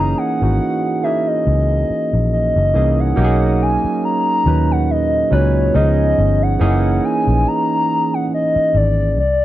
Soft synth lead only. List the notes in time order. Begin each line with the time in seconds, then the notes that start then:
Already playing: A#5
0.18 F#5
1.03 E5
1.27 D#5
2.33 D#5
3.00 F#5
3.62 G#5
4.05 A#5
4.71 F#5
4.91 D#5
5.33 C#5
5.75 D#5
6.42 F#5
7.05 G#5
7.48 A#5
8.14 F#5
8.34 D#5
8.76 D5
9.20 D5